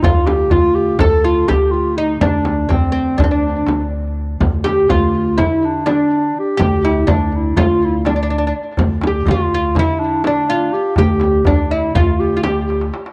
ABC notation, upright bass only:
X:1
M:9/8
L:1/8
Q:3/8=82
K:none
V:1 name="Upright bass" clef=bass
D,,2 D,,2 D,,2 D,,3 | D,,2 D,,2 D,,2 D,,3 | D,,2 D,,2 D,4 z | D,,2 D,,2 D,,4 z |
D,,2 D,,2 D,4 z | D,,2 D,,2 D,,4 z |]